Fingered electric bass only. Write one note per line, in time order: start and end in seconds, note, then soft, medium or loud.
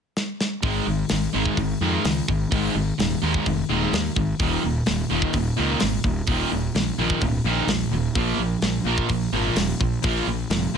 0.63 0.79 G#1 medium
0.86 1.02 G#1 medium
1.10 1.26 G#1 medium
1.34 1.50 G#1 medium
1.57 1.73 G#1 loud
1.81 1.96 F2 medium
2.04 2.20 C#2 medium
2.29 2.44 G#1 medium
2.51 2.67 G#1 medium
2.75 2.90 G#1 medium
2.98 3.14 D#1 medium
3.22 3.38 D#2 medium
3.46 3.62 F1 medium
3.69 3.85 D#1 medium
3.92 4.08 D#2 medium
4.16 4.32 G#1 medium
4.39 4.55 D#1 medium
4.64 4.79 D#1 medium
4.87 5.03 D#1 medium
5.10 5.26 D#1 medium
5.34 5.49 D#1 medium
5.59 5.74 C#2 medium
5.82 5.97 G#1 medium
6.04 6.20 D#1 medium
6.27 6.43 D#1 medium
6.52 6.68 D#1 medium
6.75 6.90 A#1 medium
6.98 7.14 A#1 medium
7.22 7.37 C#1 loud
7.44 7.60 A#1 medium
7.67 7.83 A#1 medium
7.91 8.07 D#1 medium
8.16 8.32 A#1 medium
8.38 8.54 A#1 medium
8.62 8.78 A#1 medium
8.84 9.01 A#1 medium
9.09 9.26 A#1 medium
9.32 9.48 G#1 medium
9.55 9.72 D#1 medium
9.80 9.96 A#1 medium
10.04 10.20 A#1 medium
10.27 10.43 A#1 medium
10.50 10.66 F1 medium
10.74 10.78 F1 medium